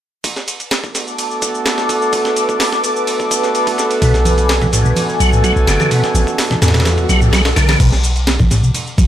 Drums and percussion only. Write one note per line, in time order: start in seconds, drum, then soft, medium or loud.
0.24 kick loud
0.24 ride medium
0.24 shaker soft
0.36 snare soft
0.36 shaker soft
0.48 ride medium
0.48 shaker medium
0.60 ride soft
0.60 shaker soft
0.71 snare loud
0.71 ride medium
0.71 shaker soft
0.84 kick medium
0.84 shaker soft
0.95 snare soft
0.95 ride medium
0.95 shaker medium
1.07 shaker soft
1.18 ride medium
1.18 shaker soft
1.31 shaker soft
1.42 kick medium
1.42 ride medium
1.42 shaker medium
1.55 shaker soft
1.66 snare loud
1.66 ride medium
1.66 shaker soft
1.78 snare medium
1.78 shaker soft
1.89 kick medium
1.89 ride medium
1.89 shaker medium
2.02 shaker soft
2.13 kick loud
2.13 ride medium
2.13 shaker soft
2.25 snare soft
2.25 shaker soft
2.36 ride medium
2.36 shaker medium
2.49 kick medium
2.49 shaker soft
2.60 snare loud
2.60 open hi-hat medium
2.60 shaker soft
2.72 snare soft
2.72 shaker soft
2.84 ride medium
2.84 shaker medium
2.96 shaker soft
3.07 ride medium
3.07 shaker soft
3.20 kick medium
3.20 shaker soft
3.31 kick medium
3.31 ride medium
3.31 shaker medium
3.43 snare soft
3.43 shaker soft
3.55 ride medium
3.55 shaker soft
3.67 kick medium
3.67 ride medium
3.67 shaker soft
3.78 snare soft
3.78 shaker medium
3.91 ride medium
3.91 shaker soft
4.02 kick loud
4.02 ride medium
4.02 shaker soft
4.14 snare soft
4.14 shaker soft
4.25 ride medium
4.25 high conga loud
4.25 shaker medium
4.38 ride soft
4.38 shaker soft
4.49 snare loud
4.49 ride medium
4.49 shaker soft
4.62 kick medium
4.62 high conga medium
4.62 shaker soft
4.73 snare soft
4.73 ride medium
4.73 shaker medium
4.85 low conga medium
4.85 shaker soft
4.96 ride medium
4.96 high conga medium
4.96 shaker soft
5.09 shaker soft
5.20 ride medium
5.20 shaker medium
5.32 high conga medium
5.32 shaker soft
5.44 kick medium
5.44 ride medium
5.44 shaker soft
5.56 shaker soft
5.67 snare loud
5.67 ride medium
5.67 shaker medium
5.79 snare soft
5.79 high conga medium
5.79 shaker soft
5.91 kick loud
5.91 ride medium
5.91 shaker soft
6.04 snare soft
6.04 shaker soft
6.14 ride medium
6.14 high conga loud
6.14 shaker medium
6.27 kick medium
6.27 shaker soft
6.38 snare loud
6.38 open hi-hat medium
6.38 shaker soft
6.50 snare medium
6.50 high conga medium
6.50 shaker soft
6.62 snare medium
6.62 ride medium
6.62 shaker medium
6.68 snare medium
6.68 ride medium
6.74 snare medium
6.74 ride medium
6.74 low conga medium
6.74 shaker soft
6.80 snare medium
6.80 ride medium
6.85 snare loud
6.85 ride medium
6.85 high conga medium
6.85 shaker soft
6.98 kick medium
6.98 shaker soft
7.09 snare soft
7.09 ride medium
7.09 shaker medium
7.21 high conga medium
7.21 shaker soft
7.33 snare loud
7.33 ride medium
7.33 shaker soft
7.45 snare loud
7.45 ride medium
7.45 shaker soft
7.56 snare loud
7.56 ride medium
7.56 shaker medium
7.69 snare loud
7.69 ride medium
7.69 high conga medium
7.69 shaker soft
7.80 kick loud
7.80 crash medium
7.80 ride medium
7.80 shaker soft
7.92 snare soft
7.92 shaker soft
8.04 ride medium
8.04 shaker medium
8.16 ride soft
8.16 shaker soft
8.27 snare loud
8.27 ride medium
8.27 shaker soft
8.39 kick loud
8.39 high conga loud
8.39 shaker soft
8.51 snare soft
8.51 ride medium
8.51 shaker medium
8.63 shaker soft
8.74 ride medium
8.74 low conga medium
8.74 shaker soft
8.87 shaker soft
8.98 kick medium
8.98 ride medium
8.98 high conga medium
8.98 shaker medium